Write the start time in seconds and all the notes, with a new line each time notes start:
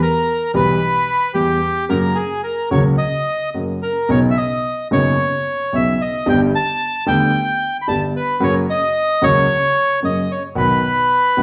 0.02 A#4
0.54 B1 B2 E3 G3 B3 G4 B4
1.34 E2 E3 G3 B3 G4
1.89 F#2 C#3 F#3 A#3 F#4 A#4
2.15 G#4
2.43 A#4
2.71 C#2 C#3 F#3 A#3 F#4 C#5
2.98 D#5
3.54 F#2 C#3 F#3 A#3 F#4
3.83 A#4
4.09 B1 B2 C#3 F#3 B3 D#4 C#5
4.31 E5
4.37 D#5
4.91 F#1 F#2 C#3 F#3 B3 D#4 C#5
5.73 B1 B2 C#3 F#3 B3 D#4 E5
6.02 D#5
6.26 G1 G2 D3 G3 B3 G4 G5
6.55 A5
7.06 D2 D3 G3 B3 G4 G5
7.82 B5
7.88 G1 G2 D3 G3 B3 G4 A5
8.16 B4
8.40 F#2 C#3 F#3 A#3 F#4 C#5
8.70 D#5
9.21 C#2 C#3 F#3 A#3 F#4 C#5
10.02 F#2 C#3 F#3 A#3 F#4 D#5
10.31 C#5
10.55 B1 B2 D#3 F#3 B3 F#4 B4
11.37 F#1 F#2 D#3 F#3 B3 F#4